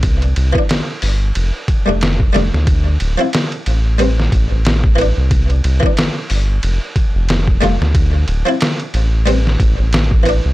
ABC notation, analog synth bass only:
X:1
M:4/4
L:1/16
Q:"Swing 16ths" 1/4=91
K:Ddor
V:1 name="Analog synth bass" clef=bass
C,,2 C,, z3 G,,,2 F,,, z2 F,,,3 F,,, D,,- | D,,2 D,,, z3 A,,,4 A,,, A,,,4 C,,- | C,,2 C,, z3 G,,,2 F,,, z2 F,,,3 F,,, D,,- | D,,2 D,,, z3 A,,,4 A,,, A,,,4 C,, |]